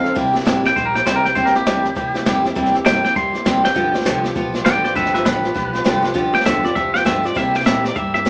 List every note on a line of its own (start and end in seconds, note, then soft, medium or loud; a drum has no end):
0.00 0.16 A4 medium
0.00 0.15 F5 loud
0.04 0.15 C4 soft
0.04 0.16 D#4 medium
0.04 muted upright bass stroke soft
0.04 snare soft
0.15 0.46 C2 loud
0.15 0.34 C3 medium
0.15 0.35 G3 medium
0.15 0.34 A#3 loud
0.15 0.33 E4 loud
0.15 0.32 G4 medium
0.15 kick loud
0.15 snare soft
0.33 0.44 A#3 medium
0.33 0.45 E4 medium
0.33 0.45 G4 medium
0.33 snare soft
0.41 snare soft
0.45 0.76 A1 loud
0.45 0.64 C3 medium
0.45 0.64 G3 medium
0.45 0.64 A#3 medium
0.45 0.64 E4 loud
0.45 0.62 G4 medium
0.45 kick medium
0.45 snare loud
0.45 hi-hat pedal medium
0.63 0.75 A#3 medium
0.63 0.75 E4 medium
0.63 0.76 G4 medium
0.63 0.76 G5 loud
0.63 snare soft
0.75 1.05 A#1 medium
0.75 0.94 G3 medium
0.75 0.95 A#3 medium
0.75 0.94 E4 medium
0.75 0.93 G4 medium
0.75 0.86 C5 loud
0.75 kick loud
0.75 snare soft
0.86 0.96 A#4 loud
0.94 1.05 A#3 soft
0.94 1.06 E4 medium
0.94 1.06 G4 medium
0.94 1.06 G5 loud
0.94 snare soft
1.06 1.35 C2 medium
1.06 1.25 C3 medium
1.06 1.25 G3 medium
1.06 1.25 A#3 medium
1.06 1.24 E4 medium
1.06 1.23 G4 medium
1.06 1.16 C5 medium
1.06 kick medium
1.06 snare loud
1.06 hi-hat pedal medium
1.16 1.26 A#4 loud
1.24 1.35 A#3 medium
1.24 1.35 E4 medium
1.24 1.36 G4 medium
1.24 1.35 G5 medium
1.24 snare soft
1.35 1.65 E2 medium
1.35 1.54 C3 medium
1.35 1.55 G3 medium
1.35 1.55 A#3 medium
1.35 1.54 E4 medium
1.35 1.53 G4 loud
1.35 1.45 C5 loud
1.35 kick loud
1.35 snare soft
1.45 1.55 A#4 loud
1.45 snare soft
1.54 1.66 A#3 soft
1.54 1.66 E4 medium
1.54 1.66 G4 medium
1.54 2.43 G4 medium
1.54 snare soft
1.66 1.95 D2 loud
1.66 1.85 C3 medium
1.66 1.85 G3 medium
1.66 1.85 A#3 medium
1.66 1.84 E4 medium
1.66 1.83 G4 medium
1.66 kick medium
1.66 snare loud
1.66 hi-hat pedal medium
1.84 1.95 A#3 soft
1.84 1.96 E4 soft
1.84 1.96 G4 medium
1.84 snare soft
1.95 2.25 C2 medium
1.95 2.14 G3 medium
1.95 2.15 A#3 medium
1.95 2.14 E4 medium
1.95 2.13 G4 medium
1.95 kick loud
1.95 snare soft
2.14 2.25 A#3 soft
2.14 2.26 E4 medium
2.14 2.26 G4 medium
2.14 snare soft
2.26 2.55 F2 loud
2.26 2.44 C3 medium
2.26 2.45 G3 loud
2.26 2.45 A#3 loud
2.26 2.44 E4 loud
2.26 2.43 G4 loud
2.26 kick medium
2.26 snare loud
2.26 hi-hat pedal medium
2.44 2.55 A#3 soft
2.44 2.55 E4 medium
2.44 2.56 G4 medium
2.44 snare soft
2.55 2.85 E2 medium
2.55 2.74 C3 medium
2.55 2.74 G3 medium
2.55 2.74 A#3 loud
2.55 2.73 E4 medium
2.55 2.72 G4 loud
2.55 kick loud
2.55 snare soft
2.66 snare soft
2.74 2.84 A#3 medium
2.74 2.85 E4 medium
2.74 2.85 G4 medium
2.74 snare soft
2.85 3.03 G2 medium
2.85 3.04 C3 medium
2.85 3.04 G3 medium
2.85 3.04 A#3 medium
2.85 3.03 E4 medium
2.85 3.02 G4 medium
2.85 3.03 G5 loud
2.85 kick medium
2.85 snare loud
2.85 hi-hat pedal medium
3.03 3.15 A#3 soft
3.03 3.15 E4 soft
3.03 3.15 G4 medium
3.03 3.15 G5 loud
3.03 muted upright bass stroke soft
3.03 snare soft
3.15 3.33 F2 medium
3.15 3.34 G3 medium
3.15 3.34 A#3 medium
3.15 3.33 E4 medium
3.15 3.32 G4 medium
3.15 3.63 C6 loud
3.15 kick loud
3.15 snare soft
3.33 3.45 A#3 soft
3.33 3.45 E4 soft
3.33 3.45 G4 medium
3.33 muted upright bass stroke soft
3.33 snare soft
3.45 3.75 E2 loud
3.45 3.64 C3 medium
3.45 3.64 G3 medium
3.45 3.64 A#3 medium
3.45 3.63 E4 medium
3.45 3.62 G4 loud
3.45 kick medium
3.45 snare loud
3.45 hi-hat pedal medium
3.63 3.75 A#3 soft
3.63 3.75 E4 medium
3.63 3.75 G4 medium
3.63 4.52 G5 medium
3.63 snare medium
3.75 4.05 D2 medium
3.75 3.94 G2 medium
3.75 3.94 D3 medium
3.75 3.94 F3 medium
3.75 3.94 B3 medium
3.75 3.93 F4 medium
3.75 3.93 G4 medium
3.75 kick loud
3.75 snare soft
3.94 4.04 F3 soft
3.94 4.05 B3 medium
3.94 4.05 F4 medium
3.94 4.05 G4 medium
3.94 snare soft
4.01 snare soft
4.05 4.35 C2 loud
4.05 4.24 G2 medium
4.05 4.24 D3 medium
4.05 4.24 F3 medium
4.05 4.24 B3 medium
4.05 4.24 F4 medium
4.05 4.23 G4 medium
4.05 kick medium
4.05 snare loud
4.05 hi-hat pedal medium
4.24 4.34 F3 medium
4.24 4.35 B3 medium
4.24 4.35 F4 medium
4.24 4.35 G4 medium
4.24 snare soft
4.35 4.65 B1 medium
4.35 4.54 F3 medium
4.35 4.54 B3 medium
4.35 4.53 F4 medium
4.35 4.52 G4 medium
4.35 kick loud
4.35 snare soft
4.54 4.64 F3 medium
4.54 4.65 B3 medium
4.54 4.65 F4 medium
4.54 4.65 G4 medium
4.54 snare soft
4.65 4.95 A1 medium
4.65 4.84 G2 medium
4.65 4.84 D3 medium
4.65 4.84 F3 medium
4.65 4.84 B3 medium
4.65 4.83 F4 medium
4.65 4.83 G4 medium
4.65 4.83 D5 medium
4.65 4.84 G5 loud
4.65 kick medium
4.65 snare loud
4.65 hi-hat pedal medium
4.84 4.95 F3 medium
4.84 4.95 B3 medium
4.84 4.95 F4 medium
4.84 4.95 G4 medium
4.84 4.95 D5 medium
4.84 4.95 G5 medium
4.84 snare soft
4.95 5.25 G1 medium
4.95 5.14 G2 medium
4.95 5.14 D3 medium
4.95 5.14 F3 medium
4.95 5.14 B3 medium
4.95 5.13 F4 medium
4.95 5.13 G4 medium
4.95 5.13 B4 medium
4.95 5.14 E5 medium
4.95 kick loud
4.95 snare soft
5.05 snare soft
5.14 5.24 F3 medium
5.14 5.25 B3 medium
5.14 5.25 F4 medium
5.14 5.25 G4 medium
5.14 5.24 B4 medium
5.14 5.25 E5 medium
5.14 snare soft
5.25 5.55 A1 loud
5.25 5.44 G2 medium
5.25 5.44 D3 medium
5.25 5.44 F3 medium
5.25 5.44 B3 medium
5.25 5.43 F4 medium
5.25 5.42 G4 medium
5.25 6.13 B4 loud
5.25 kick loud
5.25 snare loud
5.25 hi-hat pedal medium
5.43 5.53 F3 soft
5.43 5.54 B3 soft
5.43 5.54 F4 medium
5.43 5.55 G4 medium
5.43 snare soft
5.54 5.85 B1 medium
5.54 5.74 F3 medium
5.54 5.73 B3 medium
5.54 5.73 F4 medium
5.54 5.72 G4 medium
5.54 kick loud
5.54 snare soft
5.73 5.84 F3 medium
5.73 5.84 B3 medium
5.73 5.84 F4 medium
5.73 5.84 G4 medium
5.73 snare soft
5.84 6.15 C2 medium
5.84 6.04 G2 loud
5.84 6.04 D3 loud
5.84 6.03 F3 medium
5.84 6.02 B3 loud
5.84 6.02 F4 loud
5.84 6.01 G4 loud
5.84 kick medium
5.84 snare loud
5.84 hi-hat pedal medium
6.02 6.13 F3 medium
6.02 6.13 B3 medium
6.02 6.14 F4 medium
6.02 6.14 G4 medium
6.02 snare soft
6.14 6.45 D2 medium
6.14 6.33 G2 medium
6.14 6.34 D3 loud
6.14 6.33 F3 medium
6.14 6.33 B3 medium
6.14 6.32 F4 loud
6.14 6.32 G4 medium
6.14 kick loud
6.14 snare soft
6.33 6.44 F3 soft
6.33 6.44 B3 medium
6.33 6.45 F4 medium
6.33 6.45 G4 medium
6.33 6.45 G5 loud
6.33 snare soft
6.40 snare soft
6.45 6.75 E2 medium
6.45 6.64 G2 medium
6.45 6.64 D3 medium
6.45 6.64 F3 medium
6.45 6.63 B3 medium
6.45 6.63 F4 medium
6.45 6.62 G4 medium
6.45 6.64 E5 loud
6.45 kick medium
6.45 snare loud
6.45 hi-hat pedal medium
6.63 6.74 F3 soft
6.63 6.75 B3 soft
6.63 6.75 F4 medium
6.63 6.75 G4 medium
6.63 6.75 D5 loud
6.63 snare soft
6.75 7.05 F2 medium
6.75 6.94 F3 medium
6.75 6.94 B3 medium
6.75 6.94 F4 medium
6.75 6.93 G4 medium
6.75 6.93 E5 loud
6.75 kick loud
6.75 snare soft
6.94 7.04 F3 soft
6.94 7.05 B3 soft
6.94 7.05 F4 medium
6.94 7.05 G4 medium
6.94 7.05 G5 loud
6.94 snare soft
7.05 7.24 G2 medium
7.05 7.35 G2 medium
7.05 7.24 D3 medium
7.05 7.24 F3 medium
7.05 7.23 B3 medium
7.05 7.23 F4 loud
7.05 7.22 G4 medium
7.05 7.25 E5 medium
7.05 kick medium
7.05 snare loud
7.05 hi-hat pedal medium
7.23 7.35 F3 soft
7.23 7.35 B3 soft
7.23 7.35 F4 medium
7.23 7.35 G4 medium
7.23 7.37 D5 medium
7.23 snare soft
7.35 7.54 C3 medium
7.35 7.65 C3 loud
7.35 7.54 G3 medium
7.35 7.54 A#3 medium
7.35 7.54 E4 medium
7.35 7.52 G4 medium
7.35 7.56 E5 medium
7.35 kick loud
7.35 snare soft
7.54 7.64 A#3 medium
7.54 7.65 E4 medium
7.54 7.65 G4 medium
7.54 7.66 G5 medium
7.54 snare soft
7.61 7.84 C3 medium
7.61 snare soft
7.65 7.95 A#2 loud
7.65 7.84 G3 medium
7.65 7.84 A#3 medium
7.65 7.84 E4 medium
7.65 7.83 G4 medium
7.65 7.85 E5 medium
7.65 kick medium
7.65 snare loud
7.65 hi-hat pedal medium
7.84 7.95 A#3 medium
7.84 7.95 E4 medium
7.84 7.96 G4 medium
7.84 7.96 D5 loud
7.84 snare soft
7.95 8.25 G2 medium
7.95 8.14 G3 medium
7.95 8.15 A#3 medium
7.95 8.14 E4 medium
7.95 8.13 G4 medium
7.95 8.13 E5 loud
7.95 kick loud
7.95 snare soft
8.14 8.24 A#3 soft
8.14 8.25 E4 medium
8.14 8.25 G4 medium
8.14 8.30 E5 loud
8.14 snare soft
8.25 8.30 E2 medium
8.25 8.30 C3 medium
8.25 8.30 G3 medium
8.25 8.30 A#3 medium
8.25 8.30 E4 medium
8.25 8.30 G4 medium
8.25 kick medium
8.25 snare medium
8.25 hi-hat pedal medium